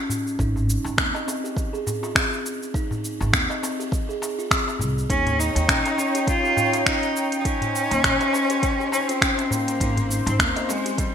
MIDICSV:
0, 0, Header, 1, 7, 480
1, 0, Start_track
1, 0, Tempo, 588235
1, 321, Time_signature, 4, 2, 24, 8
1, 9096, End_track
2, 0, Start_track
2, 0, Title_t, "Analog synth pad"
2, 0, Program_c, 0, 89
2, 4162, Note_on_c, 0, 73, 73
2, 4164, Note_on_c, 0, 63, 78
2, 4164, Note_on_c, 0, 79, 83
2, 6062, Note_off_c, 0, 73, 0
2, 6080, Note_on_c, 0, 72, 68
2, 7969, Note_off_c, 0, 63, 0
2, 7970, Note_off_c, 0, 79, 0
2, 9096, Note_off_c, 0, 72, 0
2, 9096, End_track
3, 0, Start_track
3, 0, Title_t, "Kalimba"
3, 0, Program_c, 1, 108
3, 318, Note_on_c, 1, 63, 72
3, 448, Note_off_c, 1, 63, 0
3, 800, Note_on_c, 1, 60, 73
3, 929, Note_off_c, 1, 60, 0
3, 934, Note_on_c, 1, 75, 69
3, 1029, Note_off_c, 1, 75, 0
3, 1039, Note_on_c, 1, 60, 78
3, 1161, Note_off_c, 1, 60, 0
3, 1175, Note_on_c, 1, 67, 67
3, 1402, Note_off_c, 1, 67, 0
3, 1412, Note_on_c, 1, 68, 69
3, 1474, Note_off_c, 1, 68, 0
3, 1654, Note_on_c, 1, 65, 70
3, 1754, Note_off_c, 1, 65, 0
3, 1759, Note_on_c, 1, 60, 78
3, 1888, Note_off_c, 1, 60, 0
3, 2240, Note_on_c, 1, 63, 73
3, 2369, Note_off_c, 1, 63, 0
3, 2720, Note_on_c, 1, 60, 78
3, 2849, Note_off_c, 1, 60, 0
3, 2856, Note_on_c, 1, 75, 68
3, 2950, Note_off_c, 1, 75, 0
3, 2960, Note_on_c, 1, 60, 75
3, 3082, Note_off_c, 1, 60, 0
3, 3097, Note_on_c, 1, 67, 67
3, 3323, Note_off_c, 1, 67, 0
3, 3337, Note_on_c, 1, 68, 66
3, 3396, Note_off_c, 1, 68, 0
3, 3579, Note_on_c, 1, 65, 67
3, 3677, Note_off_c, 1, 65, 0
3, 3682, Note_on_c, 1, 60, 76
3, 3810, Note_off_c, 1, 60, 0
3, 4161, Note_on_c, 1, 63, 71
3, 4289, Note_off_c, 1, 63, 0
3, 4641, Note_on_c, 1, 61, 75
3, 4769, Note_off_c, 1, 61, 0
3, 4777, Note_on_c, 1, 75, 71
3, 4870, Note_off_c, 1, 75, 0
3, 4881, Note_on_c, 1, 61, 73
3, 5002, Note_off_c, 1, 61, 0
3, 5017, Note_on_c, 1, 67, 67
3, 5243, Note_off_c, 1, 67, 0
3, 5257, Note_on_c, 1, 67, 65
3, 5316, Note_off_c, 1, 67, 0
3, 5497, Note_on_c, 1, 65, 70
3, 5596, Note_off_c, 1, 65, 0
3, 5602, Note_on_c, 1, 61, 77
3, 5729, Note_off_c, 1, 61, 0
3, 6081, Note_on_c, 1, 63, 74
3, 6209, Note_off_c, 1, 63, 0
3, 6561, Note_on_c, 1, 61, 74
3, 6689, Note_off_c, 1, 61, 0
3, 6697, Note_on_c, 1, 75, 69
3, 6791, Note_off_c, 1, 75, 0
3, 6802, Note_on_c, 1, 61, 78
3, 6923, Note_off_c, 1, 61, 0
3, 6938, Note_on_c, 1, 67, 66
3, 7163, Note_off_c, 1, 67, 0
3, 7178, Note_on_c, 1, 67, 67
3, 7237, Note_off_c, 1, 67, 0
3, 7417, Note_on_c, 1, 65, 67
3, 7516, Note_off_c, 1, 65, 0
3, 7523, Note_on_c, 1, 61, 80
3, 7650, Note_off_c, 1, 61, 0
3, 8003, Note_on_c, 1, 63, 77
3, 8130, Note_off_c, 1, 63, 0
3, 8485, Note_on_c, 1, 60, 81
3, 8611, Note_off_c, 1, 60, 0
3, 8619, Note_on_c, 1, 75, 74
3, 8712, Note_off_c, 1, 75, 0
3, 8722, Note_on_c, 1, 60, 81
3, 8843, Note_off_c, 1, 60, 0
3, 8859, Note_on_c, 1, 67, 68
3, 9084, Note_off_c, 1, 67, 0
3, 9096, End_track
4, 0, Start_track
4, 0, Title_t, "Cello"
4, 0, Program_c, 2, 42
4, 4161, Note_on_c, 2, 61, 101
4, 4401, Note_on_c, 2, 63, 97
4, 4413, Note_off_c, 2, 61, 0
4, 5114, Note_off_c, 2, 63, 0
4, 5119, Note_on_c, 2, 65, 106
4, 5567, Note_off_c, 2, 65, 0
4, 5596, Note_on_c, 2, 63, 103
4, 5998, Note_off_c, 2, 63, 0
4, 6029, Note_on_c, 2, 63, 69
4, 6079, Note_on_c, 2, 61, 121
4, 6091, Note_off_c, 2, 63, 0
4, 7274, Note_off_c, 2, 61, 0
4, 7279, Note_on_c, 2, 61, 96
4, 7413, Note_on_c, 2, 60, 88
4, 7425, Note_off_c, 2, 61, 0
4, 7758, Note_on_c, 2, 58, 98
4, 7771, Note_off_c, 2, 60, 0
4, 8372, Note_off_c, 2, 58, 0
4, 8376, Note_on_c, 2, 60, 80
4, 8474, Note_off_c, 2, 60, 0
4, 8481, Note_on_c, 2, 58, 94
4, 8723, Note_on_c, 2, 56, 90
4, 8735, Note_off_c, 2, 58, 0
4, 8966, Note_on_c, 2, 55, 86
4, 8978, Note_off_c, 2, 56, 0
4, 9096, Note_off_c, 2, 55, 0
4, 9096, End_track
5, 0, Start_track
5, 0, Title_t, "Upright bass"
5, 0, Program_c, 3, 32
5, 319, Note_on_c, 3, 32, 93
5, 630, Note_off_c, 3, 32, 0
5, 693, Note_on_c, 3, 32, 85
5, 768, Note_off_c, 3, 32, 0
5, 800, Note_on_c, 3, 39, 76
5, 895, Note_off_c, 3, 39, 0
5, 2618, Note_on_c, 3, 32, 85
5, 2691, Note_off_c, 3, 32, 0
5, 2720, Note_on_c, 3, 39, 80
5, 2815, Note_off_c, 3, 39, 0
5, 3922, Note_on_c, 3, 36, 70
5, 4098, Note_off_c, 3, 36, 0
5, 4161, Note_on_c, 3, 39, 88
5, 4471, Note_off_c, 3, 39, 0
5, 4536, Note_on_c, 3, 39, 89
5, 4609, Note_off_c, 3, 39, 0
5, 4641, Note_on_c, 3, 34, 71
5, 4735, Note_off_c, 3, 34, 0
5, 6458, Note_on_c, 3, 39, 89
5, 6530, Note_off_c, 3, 39, 0
5, 6561, Note_on_c, 3, 34, 75
5, 6656, Note_off_c, 3, 34, 0
5, 8001, Note_on_c, 3, 32, 87
5, 8311, Note_off_c, 3, 32, 0
5, 8377, Note_on_c, 3, 32, 95
5, 8450, Note_off_c, 3, 32, 0
5, 8481, Note_on_c, 3, 39, 77
5, 8576, Note_off_c, 3, 39, 0
5, 9096, End_track
6, 0, Start_track
6, 0, Title_t, "Darbuka"
6, 77, Note_on_c, 9, 64, 73
6, 159, Note_off_c, 9, 64, 0
6, 455, Note_on_c, 9, 64, 76
6, 537, Note_off_c, 9, 64, 0
6, 690, Note_on_c, 9, 63, 63
6, 771, Note_off_c, 9, 63, 0
6, 933, Note_on_c, 9, 63, 70
6, 935, Note_on_c, 9, 62, 44
6, 1015, Note_off_c, 9, 63, 0
6, 1017, Note_off_c, 9, 62, 0
6, 1042, Note_on_c, 9, 62, 32
6, 1043, Note_on_c, 9, 63, 64
6, 1124, Note_off_c, 9, 62, 0
6, 1124, Note_off_c, 9, 63, 0
6, 1415, Note_on_c, 9, 62, 40
6, 1496, Note_off_c, 9, 62, 0
6, 1525, Note_on_c, 9, 64, 89
6, 1606, Note_off_c, 9, 64, 0
6, 1657, Note_on_c, 9, 63, 62
6, 1739, Note_off_c, 9, 63, 0
6, 2001, Note_on_c, 9, 62, 31
6, 2082, Note_off_c, 9, 62, 0
6, 2373, Note_on_c, 9, 64, 82
6, 2455, Note_off_c, 9, 64, 0
6, 2616, Note_on_c, 9, 63, 64
6, 2697, Note_off_c, 9, 63, 0
6, 2853, Note_on_c, 9, 62, 46
6, 2861, Note_on_c, 9, 63, 69
6, 2935, Note_off_c, 9, 62, 0
6, 2942, Note_off_c, 9, 63, 0
6, 2960, Note_on_c, 9, 62, 30
6, 2965, Note_on_c, 9, 63, 73
6, 3041, Note_off_c, 9, 62, 0
6, 3046, Note_off_c, 9, 63, 0
6, 3443, Note_on_c, 9, 63, 66
6, 3525, Note_off_c, 9, 63, 0
6, 3816, Note_on_c, 9, 63, 57
6, 3898, Note_off_c, 9, 63, 0
6, 3911, Note_on_c, 9, 64, 84
6, 3993, Note_off_c, 9, 64, 0
6, 4297, Note_on_c, 9, 64, 83
6, 4379, Note_off_c, 9, 64, 0
6, 4531, Note_on_c, 9, 63, 59
6, 4613, Note_off_c, 9, 63, 0
6, 4778, Note_on_c, 9, 62, 47
6, 4786, Note_on_c, 9, 63, 76
6, 4860, Note_off_c, 9, 62, 0
6, 4868, Note_off_c, 9, 63, 0
6, 4879, Note_on_c, 9, 63, 63
6, 4888, Note_on_c, 9, 62, 35
6, 4960, Note_off_c, 9, 63, 0
6, 4970, Note_off_c, 9, 62, 0
6, 5252, Note_on_c, 9, 62, 40
6, 5334, Note_off_c, 9, 62, 0
6, 5361, Note_on_c, 9, 64, 92
6, 5442, Note_off_c, 9, 64, 0
6, 5494, Note_on_c, 9, 63, 60
6, 5576, Note_off_c, 9, 63, 0
6, 5845, Note_on_c, 9, 62, 28
6, 5926, Note_off_c, 9, 62, 0
6, 6214, Note_on_c, 9, 64, 83
6, 6295, Note_off_c, 9, 64, 0
6, 6453, Note_on_c, 9, 63, 66
6, 6535, Note_off_c, 9, 63, 0
6, 6697, Note_on_c, 9, 62, 48
6, 6698, Note_on_c, 9, 63, 67
6, 6778, Note_off_c, 9, 62, 0
6, 6780, Note_off_c, 9, 63, 0
6, 6797, Note_on_c, 9, 63, 69
6, 6802, Note_on_c, 9, 62, 29
6, 6879, Note_off_c, 9, 63, 0
6, 6884, Note_off_c, 9, 62, 0
6, 7279, Note_on_c, 9, 63, 68
6, 7361, Note_off_c, 9, 63, 0
6, 7653, Note_on_c, 9, 63, 62
6, 7735, Note_off_c, 9, 63, 0
6, 7758, Note_on_c, 9, 64, 95
6, 7839, Note_off_c, 9, 64, 0
6, 8134, Note_on_c, 9, 64, 74
6, 8216, Note_off_c, 9, 64, 0
6, 8375, Note_on_c, 9, 63, 62
6, 8457, Note_off_c, 9, 63, 0
6, 8614, Note_on_c, 9, 63, 78
6, 8615, Note_on_c, 9, 62, 55
6, 8696, Note_off_c, 9, 62, 0
6, 8696, Note_off_c, 9, 63, 0
6, 8721, Note_on_c, 9, 62, 35
6, 8721, Note_on_c, 9, 63, 66
6, 8802, Note_off_c, 9, 62, 0
6, 8803, Note_off_c, 9, 63, 0
6, 9096, End_track
7, 0, Start_track
7, 0, Title_t, "Drums"
7, 88, Note_on_c, 9, 82, 72
7, 169, Note_off_c, 9, 82, 0
7, 223, Note_on_c, 9, 82, 33
7, 304, Note_off_c, 9, 82, 0
7, 318, Note_on_c, 9, 36, 94
7, 329, Note_on_c, 9, 82, 44
7, 400, Note_off_c, 9, 36, 0
7, 410, Note_off_c, 9, 82, 0
7, 465, Note_on_c, 9, 82, 21
7, 547, Note_off_c, 9, 82, 0
7, 569, Note_on_c, 9, 82, 76
7, 650, Note_off_c, 9, 82, 0
7, 704, Note_on_c, 9, 82, 31
7, 786, Note_off_c, 9, 82, 0
7, 798, Note_on_c, 9, 36, 103
7, 802, Note_on_c, 9, 26, 93
7, 808, Note_on_c, 9, 82, 42
7, 880, Note_off_c, 9, 36, 0
7, 883, Note_off_c, 9, 26, 0
7, 890, Note_off_c, 9, 82, 0
7, 944, Note_on_c, 9, 82, 22
7, 1025, Note_off_c, 9, 82, 0
7, 1049, Note_on_c, 9, 82, 77
7, 1130, Note_off_c, 9, 82, 0
7, 1185, Note_on_c, 9, 82, 34
7, 1266, Note_off_c, 9, 82, 0
7, 1277, Note_on_c, 9, 36, 100
7, 1288, Note_on_c, 9, 82, 43
7, 1359, Note_off_c, 9, 36, 0
7, 1370, Note_off_c, 9, 82, 0
7, 1424, Note_on_c, 9, 82, 22
7, 1505, Note_off_c, 9, 82, 0
7, 1528, Note_on_c, 9, 82, 75
7, 1610, Note_off_c, 9, 82, 0
7, 1664, Note_on_c, 9, 82, 30
7, 1746, Note_off_c, 9, 82, 0
7, 1758, Note_on_c, 9, 36, 95
7, 1762, Note_on_c, 9, 26, 93
7, 1769, Note_on_c, 9, 82, 41
7, 1839, Note_off_c, 9, 36, 0
7, 1844, Note_off_c, 9, 26, 0
7, 1850, Note_off_c, 9, 82, 0
7, 1903, Note_on_c, 9, 82, 22
7, 1985, Note_off_c, 9, 82, 0
7, 2007, Note_on_c, 9, 82, 73
7, 2089, Note_off_c, 9, 82, 0
7, 2144, Note_on_c, 9, 82, 33
7, 2226, Note_off_c, 9, 82, 0
7, 2238, Note_on_c, 9, 36, 96
7, 2247, Note_on_c, 9, 82, 42
7, 2320, Note_off_c, 9, 36, 0
7, 2329, Note_off_c, 9, 82, 0
7, 2384, Note_on_c, 9, 82, 23
7, 2465, Note_off_c, 9, 82, 0
7, 2487, Note_on_c, 9, 82, 74
7, 2568, Note_off_c, 9, 82, 0
7, 2624, Note_on_c, 9, 82, 31
7, 2706, Note_off_c, 9, 82, 0
7, 2719, Note_on_c, 9, 36, 99
7, 2722, Note_on_c, 9, 26, 91
7, 2728, Note_on_c, 9, 82, 43
7, 2801, Note_off_c, 9, 36, 0
7, 2803, Note_off_c, 9, 26, 0
7, 2810, Note_off_c, 9, 82, 0
7, 2864, Note_on_c, 9, 82, 23
7, 2945, Note_off_c, 9, 82, 0
7, 2968, Note_on_c, 9, 82, 72
7, 3050, Note_off_c, 9, 82, 0
7, 3105, Note_on_c, 9, 82, 34
7, 3187, Note_off_c, 9, 82, 0
7, 3199, Note_on_c, 9, 36, 108
7, 3210, Note_on_c, 9, 82, 43
7, 3281, Note_off_c, 9, 36, 0
7, 3292, Note_off_c, 9, 82, 0
7, 3346, Note_on_c, 9, 82, 21
7, 3428, Note_off_c, 9, 82, 0
7, 3450, Note_on_c, 9, 82, 72
7, 3532, Note_off_c, 9, 82, 0
7, 3586, Note_on_c, 9, 82, 28
7, 3668, Note_off_c, 9, 82, 0
7, 3679, Note_on_c, 9, 36, 93
7, 3683, Note_on_c, 9, 26, 87
7, 3690, Note_on_c, 9, 82, 44
7, 3761, Note_off_c, 9, 36, 0
7, 3765, Note_off_c, 9, 26, 0
7, 3772, Note_off_c, 9, 82, 0
7, 3828, Note_on_c, 9, 82, 23
7, 3909, Note_off_c, 9, 82, 0
7, 3929, Note_on_c, 9, 82, 71
7, 4011, Note_off_c, 9, 82, 0
7, 4066, Note_on_c, 9, 82, 32
7, 4147, Note_off_c, 9, 82, 0
7, 4159, Note_on_c, 9, 36, 94
7, 4162, Note_on_c, 9, 42, 51
7, 4169, Note_on_c, 9, 82, 41
7, 4241, Note_off_c, 9, 36, 0
7, 4244, Note_off_c, 9, 42, 0
7, 4251, Note_off_c, 9, 82, 0
7, 4298, Note_on_c, 9, 42, 28
7, 4304, Note_on_c, 9, 82, 21
7, 4379, Note_off_c, 9, 42, 0
7, 4386, Note_off_c, 9, 82, 0
7, 4410, Note_on_c, 9, 82, 76
7, 4491, Note_off_c, 9, 82, 0
7, 4538, Note_on_c, 9, 42, 41
7, 4545, Note_on_c, 9, 82, 32
7, 4620, Note_off_c, 9, 42, 0
7, 4627, Note_off_c, 9, 82, 0
7, 4639, Note_on_c, 9, 36, 97
7, 4643, Note_on_c, 9, 26, 85
7, 4643, Note_on_c, 9, 42, 49
7, 4650, Note_on_c, 9, 82, 45
7, 4721, Note_off_c, 9, 36, 0
7, 4725, Note_off_c, 9, 26, 0
7, 4725, Note_off_c, 9, 42, 0
7, 4732, Note_off_c, 9, 82, 0
7, 4778, Note_on_c, 9, 42, 28
7, 4784, Note_on_c, 9, 82, 22
7, 4859, Note_off_c, 9, 42, 0
7, 4866, Note_off_c, 9, 82, 0
7, 4888, Note_on_c, 9, 82, 67
7, 4970, Note_off_c, 9, 82, 0
7, 5017, Note_on_c, 9, 42, 41
7, 5024, Note_on_c, 9, 82, 32
7, 5099, Note_off_c, 9, 42, 0
7, 5106, Note_off_c, 9, 82, 0
7, 5119, Note_on_c, 9, 36, 97
7, 5121, Note_on_c, 9, 42, 47
7, 5128, Note_on_c, 9, 82, 42
7, 5201, Note_off_c, 9, 36, 0
7, 5203, Note_off_c, 9, 42, 0
7, 5210, Note_off_c, 9, 82, 0
7, 5263, Note_on_c, 9, 82, 21
7, 5344, Note_off_c, 9, 82, 0
7, 5367, Note_on_c, 9, 82, 72
7, 5449, Note_off_c, 9, 82, 0
7, 5495, Note_on_c, 9, 42, 39
7, 5502, Note_on_c, 9, 82, 32
7, 5577, Note_off_c, 9, 42, 0
7, 5584, Note_off_c, 9, 82, 0
7, 5600, Note_on_c, 9, 36, 92
7, 5602, Note_on_c, 9, 26, 84
7, 5602, Note_on_c, 9, 42, 47
7, 5609, Note_on_c, 9, 82, 39
7, 5681, Note_off_c, 9, 36, 0
7, 5683, Note_off_c, 9, 26, 0
7, 5683, Note_off_c, 9, 42, 0
7, 5690, Note_off_c, 9, 82, 0
7, 5737, Note_on_c, 9, 42, 29
7, 5743, Note_on_c, 9, 82, 21
7, 5818, Note_off_c, 9, 42, 0
7, 5825, Note_off_c, 9, 82, 0
7, 5847, Note_on_c, 9, 82, 70
7, 5929, Note_off_c, 9, 82, 0
7, 5974, Note_on_c, 9, 42, 39
7, 5981, Note_on_c, 9, 82, 32
7, 6056, Note_off_c, 9, 42, 0
7, 6063, Note_off_c, 9, 82, 0
7, 6080, Note_on_c, 9, 36, 91
7, 6081, Note_on_c, 9, 42, 53
7, 6088, Note_on_c, 9, 82, 42
7, 6162, Note_off_c, 9, 36, 0
7, 6163, Note_off_c, 9, 42, 0
7, 6169, Note_off_c, 9, 82, 0
7, 6218, Note_on_c, 9, 42, 30
7, 6224, Note_on_c, 9, 82, 22
7, 6299, Note_off_c, 9, 42, 0
7, 6306, Note_off_c, 9, 82, 0
7, 6329, Note_on_c, 9, 82, 70
7, 6411, Note_off_c, 9, 82, 0
7, 6458, Note_on_c, 9, 42, 40
7, 6465, Note_on_c, 9, 82, 31
7, 6539, Note_off_c, 9, 42, 0
7, 6546, Note_off_c, 9, 82, 0
7, 6560, Note_on_c, 9, 36, 95
7, 6562, Note_on_c, 9, 26, 95
7, 6562, Note_on_c, 9, 42, 51
7, 6569, Note_on_c, 9, 82, 38
7, 6642, Note_off_c, 9, 36, 0
7, 6644, Note_off_c, 9, 26, 0
7, 6644, Note_off_c, 9, 42, 0
7, 6651, Note_off_c, 9, 82, 0
7, 6697, Note_on_c, 9, 42, 29
7, 6704, Note_on_c, 9, 82, 22
7, 6778, Note_off_c, 9, 42, 0
7, 6785, Note_off_c, 9, 82, 0
7, 6808, Note_on_c, 9, 82, 65
7, 6890, Note_off_c, 9, 82, 0
7, 6935, Note_on_c, 9, 42, 43
7, 6941, Note_on_c, 9, 82, 30
7, 7016, Note_off_c, 9, 42, 0
7, 7023, Note_off_c, 9, 82, 0
7, 7040, Note_on_c, 9, 36, 97
7, 7042, Note_on_c, 9, 42, 51
7, 7049, Note_on_c, 9, 82, 40
7, 7122, Note_off_c, 9, 36, 0
7, 7123, Note_off_c, 9, 42, 0
7, 7130, Note_off_c, 9, 82, 0
7, 7186, Note_on_c, 9, 82, 20
7, 7268, Note_off_c, 9, 82, 0
7, 7290, Note_on_c, 9, 82, 72
7, 7372, Note_off_c, 9, 82, 0
7, 7418, Note_on_c, 9, 42, 41
7, 7425, Note_on_c, 9, 82, 27
7, 7500, Note_off_c, 9, 42, 0
7, 7507, Note_off_c, 9, 82, 0
7, 7520, Note_on_c, 9, 36, 94
7, 7524, Note_on_c, 9, 26, 89
7, 7524, Note_on_c, 9, 42, 50
7, 7531, Note_on_c, 9, 82, 40
7, 7602, Note_off_c, 9, 36, 0
7, 7606, Note_off_c, 9, 26, 0
7, 7606, Note_off_c, 9, 42, 0
7, 7613, Note_off_c, 9, 82, 0
7, 7660, Note_on_c, 9, 42, 31
7, 7667, Note_on_c, 9, 82, 21
7, 7742, Note_off_c, 9, 42, 0
7, 7749, Note_off_c, 9, 82, 0
7, 7771, Note_on_c, 9, 82, 71
7, 7852, Note_off_c, 9, 82, 0
7, 7900, Note_on_c, 9, 42, 42
7, 7906, Note_on_c, 9, 82, 31
7, 7981, Note_off_c, 9, 42, 0
7, 7988, Note_off_c, 9, 82, 0
7, 8001, Note_on_c, 9, 36, 85
7, 8005, Note_on_c, 9, 42, 58
7, 8012, Note_on_c, 9, 82, 43
7, 8082, Note_off_c, 9, 36, 0
7, 8086, Note_off_c, 9, 42, 0
7, 8093, Note_off_c, 9, 82, 0
7, 8139, Note_on_c, 9, 42, 33
7, 8146, Note_on_c, 9, 82, 20
7, 8221, Note_off_c, 9, 42, 0
7, 8228, Note_off_c, 9, 82, 0
7, 8250, Note_on_c, 9, 82, 74
7, 8332, Note_off_c, 9, 82, 0
7, 8381, Note_on_c, 9, 42, 44
7, 8388, Note_on_c, 9, 82, 30
7, 8463, Note_off_c, 9, 42, 0
7, 8470, Note_off_c, 9, 82, 0
7, 8481, Note_on_c, 9, 36, 90
7, 8485, Note_on_c, 9, 26, 97
7, 8485, Note_on_c, 9, 42, 56
7, 8492, Note_on_c, 9, 82, 42
7, 8563, Note_off_c, 9, 36, 0
7, 8567, Note_off_c, 9, 26, 0
7, 8567, Note_off_c, 9, 42, 0
7, 8574, Note_off_c, 9, 82, 0
7, 8621, Note_on_c, 9, 42, 30
7, 8628, Note_on_c, 9, 82, 22
7, 8702, Note_off_c, 9, 42, 0
7, 8709, Note_off_c, 9, 82, 0
7, 8730, Note_on_c, 9, 82, 70
7, 8812, Note_off_c, 9, 82, 0
7, 8861, Note_on_c, 9, 42, 43
7, 8868, Note_on_c, 9, 82, 31
7, 8943, Note_off_c, 9, 42, 0
7, 8949, Note_off_c, 9, 82, 0
7, 8961, Note_on_c, 9, 36, 93
7, 8963, Note_on_c, 9, 42, 52
7, 8969, Note_on_c, 9, 82, 41
7, 9043, Note_off_c, 9, 36, 0
7, 9044, Note_off_c, 9, 42, 0
7, 9051, Note_off_c, 9, 82, 0
7, 9096, End_track
0, 0, End_of_file